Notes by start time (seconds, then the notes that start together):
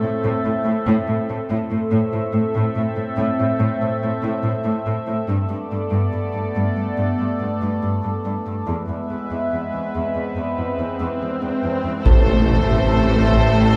Already playing: A3 C4 A4 E5
0.03 A2
0.24 A2
0.45 A2
0.66 A2
0.87 A2
1.08 A2
1.29 A2
1.50 A2
1.71 A2
1.92 A2 A3 C4 A4 E5
2.13 A2
2.34 A2
2.55 A2
2.76 A2
2.97 A2
3.18 A2
3.39 A2
3.60 A2
3.81 A2
4.02 A2
4.24 A2
4.44 A2
4.65 A2
4.86 A2
5.08 A2
5.28 G2 A3 B3 A4 D5
5.50 G2
5.72 G2
5.92 G2
6.13 G2
6.35 G2
6.56 G2
6.77 G2
6.98 G2
7.20 G2
7.40 G2
7.61 G2
7.83 G2
8.04 G2
8.25 G2
8.46 G2
8.67 E2 G#3 B3 B4 E5, swell
8.88 E2
9.10 E2
9.31 E2
9.52 E2
9.73 E2
9.94 E2
10.16 E2
10.37 E2
10.58 E2
10.80 E2
11.00 E2
11.21 E2
11.43 E2
11.63 E2
11.84 E2
12.05 A1 A2 A3 C4 A4 C5 E5, taiko, impact
13.33 taiko